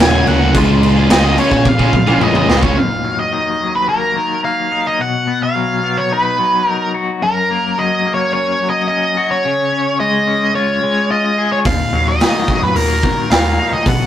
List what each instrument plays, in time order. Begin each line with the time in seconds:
Already playing: picked electric bass D#1, distorted electric guitar F#2
0.00 distorted electric guitar C#3 F#3 A#3 C#4 F#4, lead electric guitar G#5, snare, crash
0.26 picked electric bass D2, distorted electric guitar F#3 A#3 C#4 F#4, lead electric guitar F#5, crash
0.40 distorted electric guitar F#3 A#3 C#4 F#4
0.54 picked electric bass C#2, distorted electric guitar C#3 G#3 C#4 F4 G#4, kick, crash
0.83 crash
0.95 distorted electric guitar C#4 F4 G#4
1.09 picked electric bass C#2, distorted electric guitar C#3 G#3 C#4 F4 G#4, lead electric guitar D#5, snare, crash
1.37 distorted electric guitar G#3 C#4 F4 G#4, lead electric guitar C#5, crash
1.51 picked electric bass A#1, muted distorted electric guitar stroke, kick
1.65 lead electric guitar F5, kick
1.78 distorted electric guitar C#4 F4 G#4, kick
1.93 picked electric bass A#1, muted distorted electric guitar stroke, kick
2.07 distorted electric guitar C#4 F4 G#4, mid tom
2.20 distorted electric guitar C#3 G#3 C#4 F4 G#4, lead electric guitar D#5, mid tom
2.35 mid tom
2.48 picked electric bass C#2, distorted electric guitar G#3 C#4 F4 G#4, snare
2.62 distorted electric guitar C#4 F4 G#4, lead electric guitar C#5, kick
2.77 clean electric guitar D#2, lead electric guitar F5
3.04 clean electric guitar F#3
3.19 lead electric guitar D#5
3.33 clean electric guitar D#3
3.60 clean electric guitar F#3
3.75 lead electric guitar B4
3.88 clean electric guitar A#3, lead electric guitar A#4
4.16 clean electric guitar D#3
4.43 clean electric guitar A#3, lead electric guitar F5
4.72 clean electric guitar D#4
4.87 lead electric guitar D#5
4.99 clean electric guitar B2, lead electric guitar F#5
5.27 clean electric guitar B3
5.43 lead electric guitar F5
5.55 clean electric guitar F#3
5.83 clean electric guitar B3
5.98 lead electric guitar C#5
6.11 clean electric guitar D#4, lead electric guitar B4
6.39 clean electric guitar F#3
6.67 clean electric guitar D#4, lead electric guitar A#4
6.94 clean electric guitar F#4
7.22 clean electric guitar F#2, lead electric guitar A#4
7.50 clean electric guitar A#3
7.78 clean electric guitar F#3, lead electric guitar D#5
8.06 clean electric guitar A#3
8.14 lead electric guitar C#5
8.33 clean electric guitar C#4, lead electric guitar C#5
8.62 clean electric guitar F#3
8.70 lead electric guitar D#5
8.88 clean electric guitar C#4, lead electric guitar D#5
9.17 clean electric guitar F#4
9.31 lead electric guitar C#5
9.45 clean electric guitar C#3
9.72 clean electric guitar C#4
10.00 clean electric guitar G#3, lead electric guitar D#5
10.27 clean electric guitar C#4
10.55 clean electric guitar F4, lead electric guitar C#5
10.83 clean electric guitar G#3
11.11 clean electric guitar F4, lead electric guitar D#5
11.38 clean electric guitar G#4
11.52 lead electric guitar C#5
11.65 clean electric guitar D#2, picked electric bass D#2, lead electric guitar F5, kick, open hi-hat
11.93 picked electric bass D#2, clean electric guitar F#3
12.08 lead electric guitar D#5
12.20 clean electric guitar D#3, snare, open hi-hat
12.48 clean electric guitar F#3, kick
12.62 picked electric bass F#2, lead electric guitar B4
12.75 picked electric bass D#2, clean electric guitar A#3, lead electric guitar A#4, open hi-hat
13.03 clean electric guitar D#3, kick
13.30 picked electric bass D#2, clean electric guitar A#3, lead electric guitar F5, snare, open hi-hat
13.59 clean electric guitar D#4
13.72 picked electric bass D#3, lead electric guitar D#5
13.86 picked electric bass B1, clean electric guitar B2, lead electric guitar F#5, kick, open hi-hat